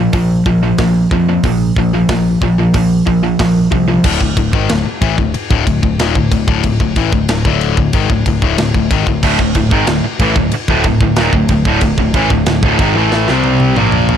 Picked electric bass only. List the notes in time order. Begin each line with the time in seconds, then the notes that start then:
0.13 A#1
0.46 A#1
0.79 A#1
1.11 F2
1.44 A#1
1.76 A#1
2.09 A#1
2.41 A#1
2.74 A#1
3.07 A#1
3.39 A#1
3.71 C2
4.04 D1
4.21 D1
4.37 D1
4.53 G#1
4.70 D1
4.87 muted picked electric bass stroke
5.01 A1
5.18 D1
5.36 muted picked electric bass stroke
5.50 D1
5.66 D1
5.83 D1
5.98 D#1
6.16 D1
6.31 D1
6.47 D1
6.64 D1
6.80 D1
6.96 A1
7.13 D1
7.29 D1
7.45 D1
7.77 D1
7.93 G#1
8.10 D1
8.26 D1
8.42 D1
8.58 D1
8.75 D1
8.91 G#1
9.07 D1
9.23 D1
9.39 D1
9.56 D1
9.71 G#1
9.87 D1
10.04 muted picked electric bass stroke
10.19 A1
10.36 D1
10.53 muted picked electric bass stroke
10.69 D1
10.85 D1
11.00 D1
11.17 D#1
11.33 D1
11.49 D1
11.66 D1
11.82 D1
11.98 D1
12.14 A1
12.30 D1
12.48 D1
12.63 D1
12.79 G#1
12.96 A1
13.29 C2
13.77 A#1